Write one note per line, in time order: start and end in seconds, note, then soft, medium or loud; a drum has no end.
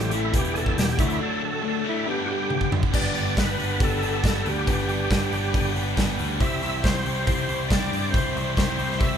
0.00 0.31 A1 medium
0.00 0.10 E3 loud
0.00 0.10 A3 medium
0.00 0.32 A3 medium
0.00 0.11 C4 loud
0.00 0.32 C4 medium
0.00 0.10 E4 loud
0.00 0.31 E4 medium
0.00 0.32 E4 medium
0.00 0.12 G4 medium
0.00 0.32 A4 medium
0.00 0.33 A4 medium
0.00 0.33 D5 medium
0.00 closed hi-hat medium
0.11 0.32 A2 medium
0.11 0.32 E3 medium
0.11 0.32 A3 loud
0.11 0.32 C4 medium
0.11 0.32 E4 medium
0.11 0.34 E4 loud
0.11 closed hi-hat medium
0.31 0.75 E1 medium
0.31 0.53 E2 medium
0.31 0.54 B2 loud
0.31 0.54 E3 loud
0.31 0.97 G3 loud
0.31 0.98 G3 medium
0.31 0.84 B3 medium
0.31 0.98 B3 medium
0.31 0.85 E4 medium
0.31 0.98 E4 medium
0.31 0.85 G4 medium
0.31 0.98 G4 medium
0.31 0.85 B4 medium
0.31 kick loud
0.31 closed hi-hat loud
0.36 0.98 B3 loud
0.36 0.99 E4 loud
0.36 0.56 G4 loud
0.45 closed hi-hat medium
0.54 0.75 E2 medium
0.54 0.76 B2 loud
0.54 0.76 E3 loud
0.54 0.56 G#4 medium
0.54 0.77 A4 loud
0.54 closed hi-hat medium
0.66 kick medium
0.76 1.00 E1 medium
0.76 0.96 E2 medium
0.76 0.96 B2 medium
0.76 0.98 G4 medium
0.76 snare loud
0.76 closed hi-hat loud
0.89 snare soft
0.89 closed hi-hat soft
0.98 1.19 D2 medium
0.98 1.18 D3 loud
0.98 1.62 F#3 medium
0.98 2.06 F#3 medium
0.98 1.50 A3 medium
0.98 1.19 A3 medium
0.98 2.06 A3 medium
0.98 1.50 D4 medium
0.98 1.19 D4 loud
0.98 2.06 D4 medium
0.98 1.20 E4 loud
0.98 1.50 F#4 medium
0.98 2.06 F#4 medium
0.98 1.51 A4 medium
0.98 kick loud
0.98 closed hi-hat medium
1.10 closed hi-hat soft
1.20 1.40 D3 loud
1.20 1.40 A3 loud
1.20 1.40 D4 loud
1.20 1.42 A4 loud
1.41 1.60 D3 medium
1.41 1.61 A3 medium
1.45 1.64 A4 loud
1.62 1.82 D3 medium
1.62 2.05 F#3 medium
1.62 1.82 A3 medium
1.62 2.06 A3 medium
1.62 2.06 D4 medium
1.62 2.07 F#4 medium
1.62 2.07 A4 medium
1.68 1.87 A4 loud
1.84 2.05 D3 medium
1.84 2.05 A3 loud
1.84 2.05 D4 loud
1.89 2.08 E4 loud
2.06 2.26 G2 medium
2.06 2.27 D3 medium
2.06 2.27 G3 loud
2.06 2.93 G3 medium
2.06 2.76 B3 medium
2.06 2.70 B3 loud
2.06 2.93 B3 medium
2.06 2.76 D4 medium
2.06 2.93 D4 medium
2.06 2.70 D4 loud
2.06 2.76 G4 medium
2.06 2.93 G4 medium
2.06 2.77 B4 medium
2.10 2.29 G4 loud
2.26 2.48 G2 medium
2.26 2.49 D3 loud
2.26 2.49 G3 loud
2.26 2.28 F#4 medium
2.31 2.71 G4 loud
2.50 2.70 G2 medium
2.50 2.70 D3 medium
2.50 high tom medium
2.61 kick medium
2.71 2.91 G2 medium
2.71 2.91 D3 medium
2.71 2.92 G3 medium
2.71 2.92 B3 medium
2.71 2.92 D4 medium
2.71 mid tom medium
2.83 kick loud
2.92 3.12 G1 medium
2.92 3.79 G2 medium
2.92 3.36 D3 medium
2.92 3.36 G3 medium
2.92 3.08 G#3 medium
2.92 3.62 B3 medium
2.92 3.15 B3 loud
2.92 3.08 C4 medium
2.92 3.16 D4 loud
2.92 3.63 D4 medium
2.92 3.08 D#4 medium
2.92 3.63 G4 medium
2.92 3.15 G4 loud
2.92 3.08 G#4 medium
2.92 3.64 B4 medium
2.92 3.13 B4 loud
2.92 3.39 D5 loud
2.92 kick loud
2.92 crash loud
3.07 6.37 G3 medium
3.07 6.37 B3 medium
3.07 6.37 D4 medium
3.07 6.37 G4 medium
3.14 3.34 G1 medium
3.14 3.38 B3 medium
3.14 3.37 D4 medium
3.14 3.40 G4 medium
3.14 3.39 B4 medium
3.14 open hi-hat medium
3.19 3.37 G3 medium
3.37 3.56 G1 medium
3.37 3.60 G3 medium
3.37 3.59 B3 medium
3.37 3.59 D4 medium
3.37 3.59 G4 medium
3.37 3.82 B4 medium
3.37 3.57 B4 medium
3.37 kick loud
3.37 snare loud
3.37 open hi-hat medium
3.58 3.77 G1 medium
3.58 3.79 G3 medium
3.58 3.81 B3 medium
3.58 3.80 D4 medium
3.58 3.82 G4 medium
3.58 3.82 B4 medium
3.58 open hi-hat medium
3.78 3.99 G1 medium
3.78 4.23 G2 medium
3.78 4.24 D3 loud
3.78 4.03 G3 medium
3.78 4.49 B3 medium
3.78 4.01 B3 medium
3.78 4.49 D4 medium
3.78 4.02 D4 medium
3.78 4.49 G4 medium
3.78 4.50 A4 medium
3.78 4.48 A4 medium
3.78 kick loud
3.78 open hi-hat medium
3.83 4.02 G4 loud
3.83 4.00 B4 medium
4.01 4.21 G1 medium
4.01 4.22 G3 medium
4.01 4.24 B3 medium
4.01 4.23 D4 medium
4.01 4.26 G4 medium
4.01 4.24 B4 medium
4.01 open hi-hat medium
4.22 4.42 G1 medium
4.22 4.65 G3 medium
4.22 4.44 B3 medium
4.22 4.46 D4 medium
4.22 4.70 G4 medium
4.22 4.43 B4 medium
4.22 kick loud
4.22 snare loud
4.22 open hi-hat medium
4.44 4.64 D2 medium
4.44 4.67 B3 medium
4.44 4.66 D4 medium
4.44 4.67 B4 medium
4.44 open hi-hat medium
4.49 5.73 G4 medium
4.66 4.86 G1 medium
4.66 5.11 G2 medium
4.66 5.11 D3 medium
4.66 5.09 G3 medium
4.66 5.36 B3 medium
4.66 4.88 B3 loud
4.66 5.36 D4 medium
4.66 4.89 D4 loud
4.66 5.36 G4 medium
4.66 5.36 B4 medium
4.66 4.87 B4 loud
4.66 kick loud
4.66 open hi-hat medium
4.70 4.88 G4 loud
4.87 5.07 G1 medium
4.87 5.10 G3 medium
4.87 5.09 B3 medium
4.87 5.09 D4 medium
4.87 5.13 G4 medium
4.87 5.10 B4 medium
4.87 open hi-hat medium
5.09 5.29 G1 medium
5.09 5.33 G3 medium
5.09 5.30 B3 medium
5.09 5.31 D4 medium
5.09 5.29 B4 medium
5.09 kick loud
5.09 snare loud
5.09 open hi-hat medium
5.13 5.32 G4 medium
5.31 5.51 G1 medium
5.31 5.53 G3 medium
5.31 5.54 B3 medium
5.31 5.53 D4 medium
5.31 5.56 G4 medium
5.31 5.54 B4 medium
5.31 open hi-hat medium
5.52 5.73 G1 medium
5.52 5.97 G2 medium
5.52 5.97 D3 loud
5.52 5.77 G3 medium
5.52 6.22 B3 medium
5.52 5.74 B3 medium
5.52 6.23 D4 medium
5.52 5.75 D4 medium
5.52 6.23 G4 medium
5.52 5.75 G4 loud
5.52 5.73 B4 medium
5.52 6.23 D5 loud
5.52 kick loud
5.52 open hi-hat medium
5.74 5.95 G1 medium
5.74 5.96 G3 medium
5.74 5.97 B3 medium
5.74 5.96 D4 medium
5.74 5.99 G4 medium
5.74 5.98 B4 medium
5.74 open hi-hat medium
5.96 6.16 G1 medium
5.96 6.39 G3 medium
5.96 6.18 B3 medium
5.96 6.19 D4 medium
5.96 6.43 G4 medium
5.96 6.16 B4 medium
5.96 kick loud
5.96 snare loud
5.96 open hi-hat medium
6.17 6.38 D2 medium
6.17 6.39 B3 medium
6.17 6.40 D4 medium
6.17 6.38 B4 medium
6.17 open hi-hat medium
6.38 6.59 C2 medium
6.38 7.07 C3 loud
6.38 7.07 E3 loud
6.38 6.64 G3 loud
6.38 9.18 G3 medium
6.38 7.09 C4 medium
6.38 6.63 C4 loud
6.38 9.18 C4 medium
6.38 7.09 E4 medium
6.38 6.62 E4 loud
6.38 9.18 E4 medium
6.38 7.10 G4 medium
6.38 9.18 G4 medium
6.38 7.10 C5 medium
6.38 6.61 C5 loud
6.38 6.86 E5 loud
6.38 kick loud
6.38 open hi-hat medium
6.43 6.61 G4 loud
6.62 6.81 C2 medium
6.62 6.82 G3 medium
6.62 6.83 C4 medium
6.62 6.85 E4 medium
6.62 6.85 G4 medium
6.62 6.85 C5 medium
6.62 open hi-hat medium
6.83 7.03 C2 medium
6.83 7.06 G3 medium
6.83 7.06 C4 medium
6.83 7.05 E4 medium
6.83 7.04 G4 medium
6.83 7.26 C5 medium
6.83 7.05 C5 medium
6.83 kick loud
6.83 snare loud
6.83 open hi-hat medium
7.04 7.25 C2 medium
7.04 7.50 C3 medium
7.04 7.49 E3 medium
7.04 7.25 G3 medium
7.04 7.26 C4 medium
7.04 7.27 E4 medium
7.04 7.27 G4 medium
7.04 7.28 C5 loud
7.04 open hi-hat medium
7.26 7.46 C2 medium
7.26 7.70 C3 medium
7.26 7.49 G3 medium
7.26 7.96 C4 medium
7.26 7.49 C4 medium
7.26 7.96 E4 medium
7.26 7.47 E4 medium
7.26 7.96 G4 medium
7.26 7.46 G4 loud
7.26 7.72 C5 medium
7.26 7.97 C5 medium
7.26 7.47 C5 medium
7.26 kick loud
7.26 open hi-hat medium
7.47 7.68 C2 medium
7.47 7.94 C3 medium
7.47 7.93 E3 medium
7.47 7.68 G3 medium
7.47 7.69 C4 medium
7.47 7.70 E4 medium
7.47 7.71 G4 medium
7.47 7.71 C5 medium
7.47 open hi-hat medium
7.68 7.90 C2 medium
7.68 7.93 G3 medium
7.68 7.92 C4 medium
7.68 7.91 E4 medium
7.68 8.14 G4 medium
7.68 8.10 D5 medium
7.68 kick loud
7.68 snare loud
7.68 open hi-hat medium
7.72 7.90 C5 medium
7.91 8.11 G2 medium
7.91 8.12 G3 medium
7.91 8.13 C4 medium
7.91 8.13 E4 medium
7.91 8.13 C5 medium
7.91 open hi-hat medium
8.10 8.33 C2 medium
8.10 8.57 C3 loud
8.10 8.57 E3 loud
8.10 8.36 G3 medium
8.10 8.82 C4 medium
8.10 8.35 C4 loud
8.10 8.83 E4 medium
8.10 8.34 E4 loud
8.10 8.83 G4 medium
8.10 8.54 C5 medium
8.10 8.83 C5 medium
8.10 kick loud
8.15 8.33 G4 loud
8.15 8.33 C5 loud
8.15 open hi-hat medium
8.34 8.55 C2 medium
8.34 8.55 G3 medium
8.34 8.56 C4 medium
8.34 8.56 E4 medium
8.34 8.58 G4 medium
8.34 8.57 C5 medium
8.34 open hi-hat medium
8.55 8.76 C2 medium
8.55 8.79 G3 medium
8.55 8.79 C4 medium
8.55 8.78 E4 medium
8.55 8.77 G4 medium
8.55 9.01 C5 medium
8.55 8.77 C5 medium
8.55 kick loud
8.55 snare loud
8.55 open hi-hat medium
8.78 8.98 C2 medium
8.78 9.18 C3 medium
8.78 9.18 E3 medium
8.78 8.99 G3 medium
8.78 9.00 C4 medium
8.78 9.01 E4 medium
8.78 9.01 G4 medium
8.78 9.02 C5 medium
8.78 open hi-hat medium
8.92 snare soft
8.98 9.18 C2 medium
8.98 9.18 C3 medium
8.98 9.18 G3 medium
8.98 9.18 C4 medium
8.98 9.18 E4 medium
8.98 9.18 G4 medium
8.98 9.18 G4 loud
8.98 9.18 C5 medium
8.98 9.18 E5 medium
8.98 kick loud
8.98 open hi-hat medium
9.02 9.18 E4 medium
9.02 9.18 C5 medium